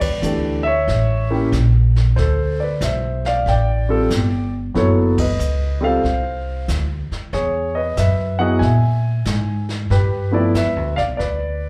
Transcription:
0.00 0.21 E2 medium
0.00 0.62 B4 medium
0.00 0.66 D5 medium
0.00 kick medium
0.00 ride medium
0.22 0.85 D2 medium
0.22 0.61 E3 soft
0.22 0.61 A3 soft
0.22 0.62 D4 soft
0.22 0.62 G4 soft
0.22 hi-hat pedal medium
0.63 1.49 C#5 medium
0.63 1.47 E5 loud
0.87 1.50 A1 medium
0.87 brush sweep soft
0.87 kick soft
0.87 snare soft
1.30 1.50 A#3 medium
1.30 1.50 C#4 soft
1.30 1.50 E4 soft
1.30 1.50 G4 medium
1.52 2.15 A#1 medium
1.52 kick soft
1.52 snare soft
1.52 hi-hat pedal soft
1.96 snare soft
2.16 2.79 D2 medium
2.16 2.58 A4 medium
2.16 2.60 C5 medium
2.16 brush sweep soft
2.16 kick soft
2.16 snare soft
2.60 2.81 B4 medium
2.60 2.80 D5 medium
2.81 3.43 B1 medium
2.81 3.22 E5 medium
2.81 kick soft
2.81 snare medium
2.81 hi-hat pedal medium
2.85 3.23 C5 medium
3.25 3.46 D5 medium
3.25 3.47 F5 medium
3.25 snare soft
3.46 4.08 A1 medium
3.46 4.50 G5 medium
3.46 brush sweep soft
3.46 kick soft
3.46 snare soft
3.50 4.51 D5 medium
3.89 4.08 G3 medium
3.89 4.09 C4 soft
3.89 4.09 F4 soft
3.89 4.09 A4 medium
4.10 4.73 G1 medium
4.10 kick soft
4.10 snare soft
4.10 hi-hat pedal medium
4.74 5.38 F#1 medium
4.74 5.13 F#3 medium
4.74 5.13 B3 soft
4.74 5.14 E4 soft
4.74 5.14 A4 medium
4.74 4.87 C#5 medium
4.74 brush sweep soft
4.74 kick soft
4.74 snare soft
5.18 5.80 B4 medium
5.18 5.85 D#5 medium
5.18 kick medium
5.18 ride medium
5.39 6.02 C#2 medium
5.39 hi-hat pedal medium
5.81 6.01 G3 medium
5.81 6.01 C4 medium
5.81 6.02 F4 soft
5.81 6.02 A4 medium
5.81 6.65 F5 medium
5.86 6.66 C5 medium
6.04 6.66 C2 medium
6.04 brush sweep soft
6.04 kick soft
6.04 snare soft
6.68 7.08 D2 medium
6.68 kick soft
6.68 snare soft
6.68 hi-hat pedal medium
7.11 muted upright bass stroke soft
7.11 snare soft
7.33 7.95 E2 medium
7.33 7.73 G#4 medium
7.33 7.77 C#5 medium
7.33 brush sweep soft
7.33 kick soft
7.33 snare soft
7.75 7.96 B4 medium
7.75 7.98 D#5 medium
7.97 8.60 F#2 medium
7.97 8.38 B4 medium
7.97 8.41 E5 medium
7.97 kick soft
7.97 snare soft
7.97 hi-hat pedal medium
8.39 8.59 F#3 medium
8.39 8.59 B3 medium
8.39 8.60 E4 soft
8.39 8.60 G#4 medium
8.39 8.61 D#5 medium
8.39 8.62 F#5 medium
8.59 9.24 A#2 medium
8.59 9.65 E5 medium
8.59 9.64 G#5 medium
8.59 brush sweep soft
8.59 kick soft
8.59 snare soft
9.25 9.88 G#2 medium
9.25 kick soft
9.25 snare soft
9.25 hi-hat pedal medium
9.69 snare soft
9.90 10.53 G2 medium
9.90 10.31 G4 medium
9.90 10.34 B4 medium
9.90 brush sweep soft
9.90 kick soft
9.90 snare soft
10.31 10.52 F3 medium
10.31 10.52 A3 medium
10.31 10.52 B3 soft
10.31 10.53 E4 medium
10.31 10.54 D5 medium
10.35 10.54 B4 medium
10.55 10.76 F2 medium
10.55 10.95 B4 medium
10.55 10.95 E5 medium
10.55 kick soft
10.55 snare medium
10.55 hi-hat pedal medium
10.76 10.97 D2 medium
10.96 11.18 B1 medium
10.96 11.03 D5 medium
10.96 11.01 F5 medium
10.96 snare soft
11.17 11.69 D2 medium
11.17 11.69 B4 medium
11.17 11.69 D5 medium
11.17 brush sweep soft
11.17 kick soft
11.17 snare soft

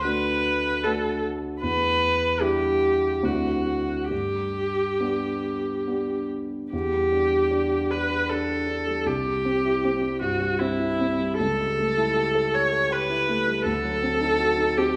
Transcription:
0.00 1.65 D2 soft
0.00 0.85 B4 medium
0.04 0.80 A3 soft
0.04 0.80 D4 soft
0.04 0.80 F#4 soft
0.84 1.58 A3 soft
0.84 1.58 D4 soft
0.84 1.58 F#4 soft
0.84 1.23 A4 medium
1.61 2.38 E2 soft
1.61 2.42 B4 medium
2.40 3.18 G3 soft
2.40 3.19 D4 soft
2.40 3.19 E4 soft
2.40 3.26 G4 medium
3.22 4.08 D2 soft
3.22 4.07 C4 soft
3.22 4.07 D4 soft
3.22 4.07 E4 soft
3.22 4.10 F#4 soft
4.10 4.97 G2 soft
4.10 6.27 G4 medium
5.00 5.83 B3 soft
5.00 5.84 D4 soft
5.00 5.84 G4 soft
5.87 6.69 B3 soft
5.87 6.69 D4 soft
5.87 6.69 G4 soft
6.73 9.03 E2 soft
6.73 7.92 G4 medium
6.93 7.24 G3 soft
7.12 7.44 D4 soft
7.31 7.63 G4 soft
7.51 7.83 D4 soft
7.71 8.03 G4 soft
7.90 8.22 D4 soft
7.90 8.31 B4 medium
8.10 8.41 G4 soft
8.29 8.61 D4 soft
8.29 9.08 A4 medium
8.49 8.79 G4 soft
8.67 8.98 D4 soft
8.87 9.06 G3 soft
9.06 11.35 C2 soft
9.06 10.21 G4 medium
9.25 9.56 G3 soft
9.45 9.76 C4 soft
9.65 9.95 E4 soft
9.85 10.14 C4 soft
10.02 10.32 G3 soft
10.22 10.52 G2 soft
10.22 10.60 F#4 medium
10.40 10.71 G3 soft
10.59 10.92 C4 soft
10.59 11.38 E4 medium
10.79 11.12 E4 soft
11.00 11.32 C4 soft
11.19 11.39 G3 soft
11.38 13.62 C#2 soft
11.38 12.56 A4 medium
11.59 11.90 G3 soft
11.79 12.09 A3 soft
11.97 12.28 E4 soft
12.16 12.46 G4 soft
12.35 12.65 A4 soft
12.54 12.83 G4 soft
12.54 12.94 C#5 medium
12.72 13.02 A4 soft
12.91 13.20 G4 soft
12.91 13.64 B4 medium
13.10 13.39 E4 soft
13.28 13.58 A3 soft
13.47 13.66 G3 soft
13.65 14.96 D2 soft
13.65 14.79 A4 medium
13.84 14.14 F#3 soft
14.03 14.33 C4 soft
14.20 14.51 D#4 soft
14.39 14.70 F#4 soft
14.58 14.89 D#4 soft
14.77 14.96 C4 soft
14.77 14.96 G4 medium

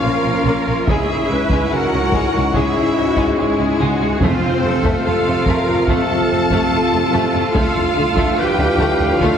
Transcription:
0.00 0.11 A#1 soft
0.00 0.84 A#2 medium
0.00 0.84 F3 medium
0.00 0.83 A#3 medium
0.00 0.83 C#4 medium
0.00 0.88 F4 medium
0.00 0.84 C#5 medium
0.00 0.87 F5 medium
0.05 0.13 A#3 soft
0.05 0.88 A#4 medium
0.24 0.32 A#1 soft
0.24 0.34 A#3 soft
0.24 0.33 C#4 soft
0.45 0.53 A#1 medium
0.45 0.66 A#3 medium
0.67 0.75 A#1 soft
0.67 0.77 A#3 soft
0.87 0.96 C#2 medium
0.87 4.17 G#2 medium
0.87 4.17 G#3 medium
0.87 1.08 G#3 medium
0.87 4.05 C#4 medium
0.87 4.05 E4 medium
0.87 1.70 E4 medium
0.87 1.30 G#4 medium
0.87 3.90 C#5 medium
0.87 1.69 E5 medium
0.87 taiko medium
1.30 1.38 C#2 soft
1.30 1.39 G#3 soft
1.30 1.39 C#4 soft
1.30 1.71 B4 medium
1.49 1.59 C#2 medium
1.49 1.71 G#3 medium
1.49 taiko medium
1.71 1.79 C#2 soft
1.71 1.81 G#3 soft
1.71 2.55 F#4 medium
1.71 2.55 A#4 medium
1.71 2.55 F#5 medium
1.92 2.00 C#2 soft
1.92 2.00 G#3 soft
1.92 2.01 C#4 soft
2.12 2.21 C#2 medium
2.12 2.33 G#3 medium
2.12 taiko medium
2.35 2.43 C#2 soft
2.35 2.43 G#3 soft
2.54 2.64 C#2 medium
2.54 2.75 G#3 medium
2.54 3.38 E4 medium
2.54 2.96 G#4 medium
2.54 3.38 E5 medium
2.54 taiko medium
2.76 2.84 C#2 soft
2.76 2.84 G#3 soft
2.96 3.04 C#2 soft
2.96 3.05 G#3 soft
2.96 3.04 C#4 soft
2.96 3.38 F#4 medium
3.16 3.26 C#2 medium
3.16 3.36 G#3 medium
3.16 taiko medium
3.36 3.46 C#2 soft
3.36 4.21 G#3 medium
3.36 3.47 G#3 medium
3.36 3.80 E4 medium
3.36 4.19 G#4 medium
3.58 3.66 C#2 soft
3.58 3.68 G#3 soft
3.58 3.68 C#4 soft
3.79 3.87 C#2 medium
3.79 3.99 G#3 medium
3.79 4.21 F#4 medium
4.00 4.08 C#2 soft
4.00 4.10 G#3 soft
4.20 4.29 F2 medium
4.20 5.42 F2 medium
4.20 7.37 C3 medium
4.20 7.37 F3 medium
4.20 4.41 A3 medium
4.20 5.05 C4 medium
4.20 7.51 C4 medium
4.20 7.51 F4 medium
4.20 4.62 F4 medium
4.20 5.05 C5 medium
4.20 7.50 F5 medium
4.20 taiko medium
4.62 4.70 F2 soft
4.62 4.72 A3 soft
4.62 4.73 C4 soft
4.62 5.04 A4 medium
4.83 4.92 F2 medium
4.83 5.04 A3 medium
4.83 taiko medium
5.05 5.13 F2 soft
5.05 5.14 A3 soft
5.05 5.86 F4 medium
5.05 5.46 A4 medium
5.05 5.88 F5 medium
5.26 5.34 F2 soft
5.26 5.36 A3 medium
5.26 5.36 C4 soft
5.46 5.54 F2 medium
5.46 5.67 A3 medium
5.46 5.88 A#4 medium
5.46 taiko medium
5.67 5.75 F2 medium
5.67 5.77 A3 soft
5.87 5.96 F2 medium
5.87 6.08 A3 medium
5.87 7.51 A4 medium
5.87 6.71 A4 medium
5.87 7.55 A5 loud
5.87 taiko medium
6.09 6.17 F2 soft
6.09 6.18 A3 medium
6.30 6.38 F2 soft
6.30 6.40 A3 medium
6.30 6.39 C4 medium
6.50 6.59 F2 medium
6.50 6.69 A3 medium
6.50 taiko medium
6.71 6.80 F2 soft
6.71 6.79 A3 medium
6.71 7.53 F4 medium
6.93 7.01 F2 medium
6.93 7.01 A3 medium
6.93 7.01 C4 medium
7.13 7.21 F2 medium
7.13 7.33 A3 medium
7.34 7.42 F2 soft
7.34 7.42 A3 medium
7.53 7.64 D2 medium
7.53 9.38 A2 medium
7.53 9.38 F3 medium
7.53 7.74 A3 medium
7.53 9.38 D4 medium
7.53 9.38 F4 medium
7.53 8.36 F4 medium
7.53 7.95 A4 medium
7.53 8.36 F5 loud
7.53 9.38 F5 medium
7.53 taiko loud
7.75 taiko low soft
7.96 8.05 D2 medium
7.96 8.04 A3 soft
7.96 8.05 D4 medium
7.96 8.37 A4 medium
8.16 8.25 D2 medium
8.16 8.36 A3 medium
8.16 taiko medium
8.37 8.47 D2 medium
8.37 8.45 A3 medium
8.37 9.21 G4 medium
8.37 9.21 B4 medium
8.37 9.21 G5 loud
8.58 8.68 D2 medium
8.58 8.67 A3 medium
8.58 8.66 D4 medium
8.58 taiko low soft
8.78 8.88 D2 medium
8.78 8.99 A3 medium
8.78 taiko medium
8.99 9.09 D2 medium
8.99 9.10 A3 medium
8.99 taiko low soft
9.20 9.30 D2 medium
9.20 9.38 A3 medium
9.20 9.38 F4 medium
9.20 9.38 A4 medium
9.20 9.38 F5 medium
9.20 taiko medium

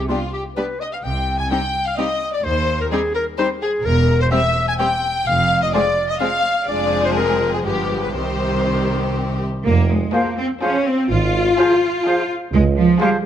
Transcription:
0.08 0.17 G3 soft
0.08 0.17 B3 soft
0.08 0.17 D4 soft
0.08 0.19 F4 medium
0.08 0.32 F4 soft
0.08 0.17 G4 soft
0.33 0.43 G4 medium
0.33 0.41 G4 medium
0.56 0.64 G3 soft
0.56 0.65 B3 soft
0.56 0.65 D4 soft
0.56 0.65 G4 soft
0.56 0.81 B4 medium
0.56 0.65 B4 soft
0.80 0.95 D#5 medium
0.80 0.86 D#5 medium
0.92 0.97 F5 soft
0.92 1.05 F5 soft
1.03 1.43 C2 medium
1.03 1.43 C3 medium
1.03 1.39 G5 medium
1.38 1.50 G#5 medium
1.50 1.59 G3 soft
1.50 1.58 C4 soft
1.50 1.59 D#4 soft
1.50 1.59 G4 soft
1.50 1.85 G5 medium
1.86 1.98 F5 medium
1.86 1.96 F5 medium
1.97 2.06 G3 soft
1.97 2.06 C4 soft
1.97 2.06 D#4 soft
1.97 2.06 G4 medium
1.97 2.36 D#5 medium
1.97 2.33 D#5 medium
2.33 2.44 D5 medium
2.33 2.45 D5 medium
2.44 2.84 D#2 medium
2.44 2.80 C5 medium
2.80 2.92 A#4 medium
2.80 2.86 A#4 medium
2.91 2.99 G3 medium
2.91 2.99 C4 medium
2.91 3.00 D#4 medium
2.91 3.00 G4 soft
2.91 2.99 G#4 medium
2.91 3.14 G#4 medium
3.14 3.22 A#4 medium
3.14 3.26 A#4 medium
3.38 3.46 G3 soft
3.38 3.47 C4 medium
3.38 3.46 D#4 soft
3.38 3.47 G4 soft
3.38 3.46 C5 medium
3.38 3.49 C5 medium
3.62 3.87 G#4 medium
3.62 3.70 G#4 medium
3.84 4.24 E1 medium
3.84 4.24 E2 medium
3.84 4.19 A#4 medium
3.84 4.20 A#4 medium
4.20 4.25 C5 medium
4.20 4.27 C5 medium
4.32 4.40 G3 medium
4.32 4.40 C4 medium
4.32 4.40 G4 medium
4.32 4.67 E5 medium
4.68 4.73 G#5 medium
4.79 4.87 G3 medium
4.79 4.88 C4 medium
4.79 4.88 C4 soft
4.79 4.87 G4 medium
4.79 5.26 G5 medium
5.26 5.66 F1 medium
5.26 5.66 F2 medium
5.26 5.62 F5 medium
5.62 5.74 D#5 medium
5.62 5.73 D#5 medium
5.73 5.83 F3 medium
5.73 5.82 G#3 medium
5.73 5.82 C4 medium
5.73 5.82 G#4 medium
5.73 6.08 D5 medium
5.73 6.12 D5 medium
6.09 6.21 D#5 medium
6.09 6.20 D#5 medium
6.20 6.29 F3 soft
6.20 6.29 G#3 medium
6.20 6.28 C4 medium
6.20 6.28 G#4 soft
6.20 6.67 F5 medium
6.67 7.61 F1 medium
6.67 7.62 F2 medium
6.67 7.61 F3 medium
6.67 7.61 G#3 medium
6.67 7.13 D4 medium
6.67 7.62 G#4 medium
6.67 7.03 D5 medium
6.67 7.04 D5 medium
7.04 7.16 C5 medium
7.04 7.10 C5 medium
7.16 7.66 C4 medium
7.16 7.52 A#4 medium
7.53 7.58 G#4 soft
7.53 7.60 G#4 medium
7.65 8.15 G1 medium
7.65 8.15 G2 medium
7.65 8.14 F3 soft
7.65 8.14 G#3 soft
7.65 8.15 B3 soft
7.65 8.13 G4 medium
7.65 8.02 G4 medium
8.02 8.15 B4 soft
8.02 8.09 B4 medium
8.14 9.42 C2 medium
8.14 9.42 C3 soft
8.14 9.44 D#3 soft
8.14 9.44 G3 soft
8.14 9.42 C4 medium
8.14 9.42 G4 soft
8.14 9.13 C5 medium
9.65 10.03 F1 medium
9.65 10.03 F2 medium
9.65 9.76 A#3 medium
9.65 9.88 A#3 medium
9.89 10.14 G#3 medium
9.89 10.00 G#3 soft
10.13 10.29 F3 soft
10.13 10.24 A#3 medium
10.13 10.37 A#3 medium
10.13 10.49 F4 medium
10.13 10.29 G#4 medium
10.13 10.49 G#4 medium
10.13 10.30 C5 medium
10.13 10.49 C5 medium
10.13 10.22 F5 medium
10.36 10.47 C4 medium
10.36 10.45 C4 medium
10.60 10.77 F3 medium
10.60 10.85 C#4 medium
10.60 10.98 F4 medium
10.60 10.77 G#4 medium
10.60 10.98 G#4 medium
10.60 10.98 C5 medium
10.60 10.78 C5 medium
10.60 10.71 F5 medium
10.85 11.10 C4 medium
10.85 10.97 C4 medium
11.10 11.49 G#1 medium
11.10 12.27 F4 medium
11.58 11.75 F3 medium
11.58 11.94 F4 medium
11.58 11.75 G#4 medium
11.58 11.95 G#4 medium
11.58 11.94 C5 medium
11.58 11.75 C5 medium
11.58 11.67 F5 medium
12.06 12.22 F3 medium
12.06 12.41 F4 medium
12.06 12.42 G#4 medium
12.06 12.23 G#4 medium
12.06 12.41 C5 medium
12.06 12.23 C5 medium
12.06 12.15 F5 medium
12.53 12.91 C#2 loud
12.53 12.91 C#2 medium
12.53 12.62 G#3 loud
12.53 12.65 G#3 medium
12.77 13.00 F3 medium
13.00 13.17 F3 medium
13.00 13.11 G3 medium
13.00 13.09 G3 medium
13.00 13.26 F4 medium
13.00 13.26 G#4 medium
13.00 13.16 G#4 medium
13.00 13.26 C5 medium
13.00 13.17 C5 medium
13.00 13.10 F5 medium

